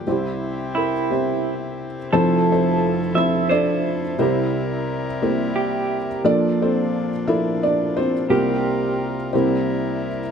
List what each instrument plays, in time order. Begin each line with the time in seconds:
Already playing: harmonium G4
0.07 felt piano C2 C3 G3 C4 E4 G4 C5, harmonium C3 C4 E4
0.11 felt piano E4
0.75 clean electric guitar E4, felt piano A#4
1.10 felt piano G3 C4 E4 G4 C5
2.12 felt piano F1 F2 F3 C4 E4 A4 C5, harmonium F2 F3 E4 A4, clean electric guitar A4
2.51 felt piano C4 A4 C5
3.14 felt piano F3 C4 E4 A4 C5 E5, clean electric guitar E5
3.19 felt piano E4
3.49 felt piano D4 A4 D5, clean electric guitar C5
4.18 felt piano C2 C3 G3 C4 E4 G4 A#4 C5, harmonium C3 G3 A#4
5.22 felt piano G3 A#3 C4 E4 A#4 C5
5.56 clean electric guitar G4
6.23 felt piano A#1 A#2 F3 A#3 D4 A4 D5, harmonium A#2 F3 D4
6.62 felt piano C4 A4 C5
7.27 felt piano F3 A#3 D4 E4 A4 A#4 E5
7.63 felt piano D4 D5
7.97 felt piano C4 C5
8.29 felt piano C2 C3 G3 A#3 C4 F4 G4 A#4, harmonium C3 G3 F4 A#4, clean electric guitar G4
8.33 felt piano A#3 F4
9.33 felt piano C2 C3 G3 A#3 C4 E4 G4 A#4 C5, harmonium E4 A#4